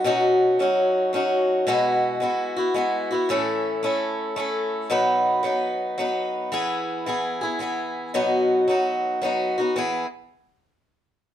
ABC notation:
X:1
M:3/4
L:1/8
Q:"Swing" 1/4=111
K:E
V:1 name="Steel-string acoustic guitar"
[B,,F,CDF]2 [F,CDF]2 [F,CDF]2 | [B,,G,B,EF]2 [G,B,EF] [B,EF] [G,B,EF] [B,EF] | [A,,E,A,CEA]2 [A,CEA]2 [A,CEA]2 | [B,,F,B,DB]2 [F,B,DB]2 [F,B,DB]2 |
[E,B,EG]2 [E,B,EG] [B,EG] [E,B,EG]2 | [B,,F,B,DF]2 [F,B,DF]2 [F,B,DF] [B,DF] | [E,B,EG] z4 z |]